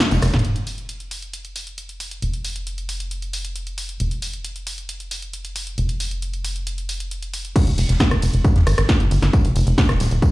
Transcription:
0.00 snare, closed hi-hat, high tom, ride, tambourine
0.11 F1, snare, closed hi-hat, high tom, tambourine
0.22 F1, cross-stick, snare, open hi-hat, ride, tambourine
0.33 F1, snare, closed hi-hat, mid tom
0.39 closed hi-hat
0.45 F1, closed hi-hat
0.56 closed hi-hat
0.67 open hi-hat
0.78 closed hi-hat
0.89 closed hi-hat
1.00 closed hi-hat
1.11 open hi-hat
1.22 closed hi-hat
1.33 closed hi-hat
1.45 closed hi-hat
1.56 open hi-hat
1.67 closed hi-hat
1.78 closed hi-hat
1.89 closed hi-hat
2.00 open hi-hat
2.11 closed hi-hat
2.22 F1, closed hi-hat
2.34 closed hi-hat
2.45 open hi-hat
2.56 closed hi-hat
2.67 closed hi-hat
2.78 closed hi-hat
2.89 open hi-hat
3.00 closed hi-hat
3.11 closed hi-hat
3.22 closed hi-hat
3.33 open hi-hat
3.45 closed hi-hat
3.56 closed hi-hat
3.67 closed hi-hat
3.78 open hi-hat
3.89 closed hi-hat
4.00 F1, closed hi-hat
4.11 closed hi-hat
4.22 open hi-hat
4.33 closed hi-hat
4.45 closed hi-hat
4.56 closed hi-hat
4.67 open hi-hat
4.78 closed hi-hat
4.89 closed hi-hat
5.00 closed hi-hat
5.11 open hi-hat
5.22 closed hi-hat
5.33 closed hi-hat
5.45 closed hi-hat
5.56 open hi-hat
5.67 closed hi-hat
5.78 F1, closed hi-hat
5.89 closed hi-hat
6.00 open hi-hat
6.11 closed hi-hat
6.22 closed hi-hat
6.34 closed hi-hat
6.45 open hi-hat
6.56 closed hi-hat
6.67 closed hi-hat
6.78 closed hi-hat
6.89 open hi-hat
7.00 closed hi-hat
7.11 closed hi-hat
7.22 closed hi-hat
7.34 open hi-hat
7.45 closed hi-hat
7.56 kick, closed hi-hat, crash, ride, tambourine
7.67 F1, closed hi-hat
7.78 F1, open hi-hat, ride
7.89 F1, snare, closed hi-hat
8.00 kick, snare, closed hi-hat, ride, tambourine
8.11 F1, cross-stick, closed hi-hat
8.22 F1, open hi-hat, ride, tambourine
8.33 F1, closed hi-hat
8.45 kick, closed hi-hat, ride, tambourine
8.55 F2, snare, closed hi-hat
8.67 G#1, cross-stick, open hi-hat, ride, tambourine
8.77 G#1, cross-stick, snare, closed hi-hat
8.89 kick, snare, closed hi-hat, ride, tambourine
9.00 G1, closed hi-hat
9.11 G1, open hi-hat, ride, tambourine
9.22 G1, snare, closed hi-hat
9.33 kick, closed hi-hat, ride, tambourine
9.45 F1, closed hi-hat
9.56 F1, open hi-hat, ride, tambourine
9.67 F1, closed hi-hat
9.78 kick, snare, closed hi-hat, ride, tambourine
9.89 D#1, cross-stick, snare, closed hi-hat
10.00 D#1, snare, open hi-hat, ride, tambourine
10.11 D#1, closed hi-hat
10.22 kick, closed hi-hat, ride, tambourine

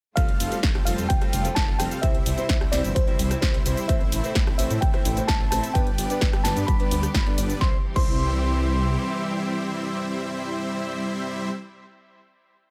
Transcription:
0.16 F1 C3 G3 A3 C4 F4 A4 F5, kick, closed hi-hat, cabasa
0.29 closed hi-hat
0.40 F1 G3 C4 F4 A4 F5, open hi-hat, cabasa
0.51 G3 C4 F4 A4, closed hi-hat, cabasa
0.63 F1, kick, snare, closed hi-hat, cabasa
0.75 G3 C4 F4 A4 G5, cross-stick, closed hi-hat
0.85 F1 G3 C4 F4 A4 F5, open hi-hat, cabasa
0.98 F2, closed hi-hat, cabasa
1.09 F1 G3 C4 F4 A4 F5 G5, kick, closed hi-hat, cabasa
1.21 G3 C4 F4 A4, cross-stick, closed hi-hat
1.33 F1 G3 C4 F4 A4 F5, open hi-hat, cabasa
1.44 G3 C4 F4 A4, closed hi-hat, cabasa
1.55 F1 A5, kick, snare, closed hi-hat, cabasa
1.68 G3 C4 F4 A4 F5
1.79 F1 C3 G3 C4 F4 A4 F5 G5, cross-stick, open hi-hat, cabasa
1.91 closed hi-hat, cabasa
2.02 C2 C3 E3 G3 C4 E4 C5 E5, kick, closed hi-hat, cabasa
2.15 closed hi-hat
2.26 C2 G3 C4 E4 C5 E5, open hi-hat, cabasa
2.37 C3 G3 C4 E4 C5, closed hi-hat, cabasa
2.49 C2, kick, snare, closed hi-hat, cabasa
2.61 G3 C4 E4 C5 G5, cross-stick, closed hi-hat
2.72 C2 C3 G3 C4 E4 C5 D5 E5, snare, open hi-hat, cabasa
2.84 G1, closed hi-hat, cabasa
2.95 C2 G3 C4 E4 C5 E5, kick, closed hi-hat, cabasa
3.07 C3 G3 C4 E4 C5, closed hi-hat
3.19 C2 G3 C4 E4 C5 E5, open hi-hat, cabasa
3.30 C3 G3 C4 E4 C5, cross-stick, closed hi-hat, cabasa
3.41 C2 C5, kick, snare, closed hi-hat, cabasa
3.54 G3 C4 E4 C5 E5, closed hi-hat
3.65 C2 G3 C4 E4 C5 E5, open hi-hat, cabasa
3.77 closed hi-hat, cabasa
3.88 A1 A2 E3 A3 C4 E4 C5 E5, kick, closed hi-hat, cabasa
4.01 closed hi-hat
4.12 A1 A3 C4 E4 C5 E5, open hi-hat, cabasa
4.23 A2 A3 C4 E4 C5, closed hi-hat, cabasa
4.35 A1, kick, snare, closed hi-hat, cabasa
4.47 A3 C4 E4 C5 G5, cross-stick, closed hi-hat
4.58 A1 A2 A3 C4 E4 C5 E5, open hi-hat, cabasa
4.70 A2, closed hi-hat, cabasa
4.81 A1 C4 E4 C5 G5, kick, closed hi-hat, cabasa
4.93 A2 A3 C4 E4 C5, cross-stick, closed hi-hat
5.05 A1 A3 C4 E4 C5 E5, open hi-hat, cabasa
5.16 A2 A3 C4 E4 C5, closed hi-hat, cabasa
5.28 A1 A5, kick, snare, closed hi-hat, cabasa
5.40 A3 C4 E4 C5 E5
5.51 A1 A3 C4 E4 C5 E5 A5, cross-stick, open hi-hat, cabasa
5.63 closed hi-hat, cabasa
5.74 G1 G2 D3 G3 B3 D4 G4 B4 D5 G5, kick, closed hi-hat, cabasa
5.87 closed hi-hat
5.98 G1 G3 B3 D4 B4 D5, open hi-hat, cabasa
6.09 G2 G3 B3 D4 B4, closed hi-hat, cabasa
6.21 G1, kick, snare, closed hi-hat, cabasa
6.33 G3 B3 D4 B4 E5, cross-stick, closed hi-hat
6.44 G1 G2 G3 B3 D4 B4 D5 A5, snare, open hi-hat, cabasa
6.56 G2, closed hi-hat, cabasa
6.67 G1 G3 B3 D4 D5 B5, kick, closed hi-hat, cabasa
6.79 G2 G3 B3 D4 B4, closed hi-hat
6.91 D2 G3 B3 D4 B4 D5, open hi-hat, cabasa
7.03 cross-stick, closed hi-hat, cabasa
7.14 G1, kick, snare, closed hi-hat, cabasa
7.26 G2 G3 B3 D4 A4 B4 D5, closed hi-hat
7.38 G1 G3 B3 D4 B4 D5, open hi-hat, cabasa
7.50 closed hi-hat, cabasa
7.59 C2 E3 G3 C4 E4 G4 C5 E5 C6, kick, snare
7.94 C2 G3 C4 E4 C5 E5 C6, kick, crash

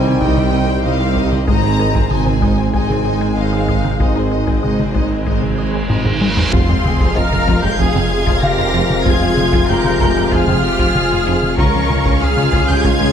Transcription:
Already playing: C2 C3 D#3 G3 C4 D#4 G#5
0.06 D#3 C4 G4 C5
0.21 C2 C3 G3 D#4 C5 D#5 G5, taiko
0.37 C4 G4 C5, taiko mid
0.53 G3 C4 D#4 C5 D#5
0.68 C3 C4 G4 C5
0.84 C2 C3 G3 D#4 C5 D#5 F5
1.00 C4 G4 C5
1.16 C3 G3 D#4 C5 D#5, taiko
1.32 G3 C4 G4 C5 D#5, taiko mid
1.47 G#1 G#2 D#3 G#3 C4 D#4 C5 D#5 A#5, taiko
1.63 C4 D#4 G#4 C5
1.79 G#3 D#4 G#4 A#4 C5 D#5 A#5
1.95 G#3 C4 G#4 C5, taiko
2.11 G#1 G#2 G#3 D#4 G#4 C5 D#5 G#5, taiko mid
2.27 C4 D#4 G#4 C5, taiko mid
2.42 G#3 D#4 C5 D#5, taiko
2.58 C4 G#4 C5
2.73 G#1 G#2 G#3 D#4 G#4 C5 D#5 G#5, taiko
2.89 C4 G#4 C5, taiko mid
3.05 G#3 D#4 G#4 C5 D#5
3.21 G#3 C4 G#4 C5
3.36 G#1 G#2 G#3 D#4 C5 D#5 F5
3.53 C4 G#4 C5
3.68 G#3 D#4 C5 D#5, taiko
3.84 C4 D#4 G#4 C5, taiko mid
4.00 G#1 G#2 G#3 D#4 C5 D#5, taiko, reverse cymbal
4.16 C4 D#4 G#4 C5
4.31 G#3 D#4 G#4 C5 D#5
4.47 G#3 C4 G#4 C5, taiko
4.63 G#1 G#2 G#3 D#4 G#4 C5 D#5, taiko mid
4.79 C4 D#4 G#4 C5, taiko mid
4.95 G#3 D#4 C5 D#5, taiko
5.10 C4 G#4 C5
5.26 G#1 G#2 G#3 D#4 C5 D#5, taiko
5.42 C4 G#4 C5, taiko mid
5.58 G#3 D#4 G#4 C5 D#5
5.74 G#3 C4 G#4 C5
5.89 G#1 G#2 G#3 D#4 C5 D#5, taiko low-mid
6.05 C4 G#4 C5, taiko low-mid
6.21 G#3 D#4 C5 D#5, taiko high
6.37 C4 D#4 G#4 C5, taiko low
6.52 F1 F2 C3 F3 G#3 C4 F4 F5 C6, taiko, sub drop
6.68 F2 G#3 C4
6.84 F1 F2 G#3 C4 G#4, taiko mid
6.99 F2 F3 F4, taiko
7.15 F1 F2 C4 F4 A#4 D#5 F6
7.31 F2 G#3 F4, taiko mid
7.46 F1 F2 F3 F4, taiko
7.62 F2 G#3 C4 G4 G6
7.78 F1 F2 F3 F4 G#4 G#6, taiko
7.93 F2 C4, taiko mid
8.10 G#4
8.25 F2 F3 F4, taiko
8.41 G4 A#4 F5 A#6, taiko mid
8.57 F2 G#3 F4
8.73 F1 F2 F3 F4
8.90 taiko mid
9.04 F1 F2 F3 F4 G#4 G#6, taiko
9.21 F2 G#3 C4
9.37 F1 F2 G#3 C4, taiko mid
9.52 F2 F3 F4, taiko
9.68 F1 F2 C4 F4 G4 A#4 G6
9.84 F2 G#3 F4, taiko mid
9.99 F1 F2 F3 F4, taiko
10.15 F2 G#3 C4
10.31 F1 F2 F3 F4 G#4 F6, taiko
10.48 F2 C4, taiko mid
10.63 G4
10.79 F2 F3 F4, taiko
10.95 G#4, taiko mid
11.11 F2 G#3 F4
11.27 F1 F2 F3 F4
11.42 taiko mid
11.58 C#2 G#2 C#3 G#3 C#4 F4 A#4 F5 A#5 C#6, taiko
11.74 C#2 F3 C#4
11.90 C#2 G#3, taiko mid
12.06 C#2 C#3 F4, taiko
12.22 C#2 C#4 F4 G#4 F6
12.37 C#2 G#3 C#4, taiko mid
12.53 C#2 C#3 F4, taiko
12.68 C#2 F3 C#4 G4 G6
12.84 C#2 C#3 F4 G#4 G#6, taiko
13.00 C#2 G#3 C#4, taiko mid

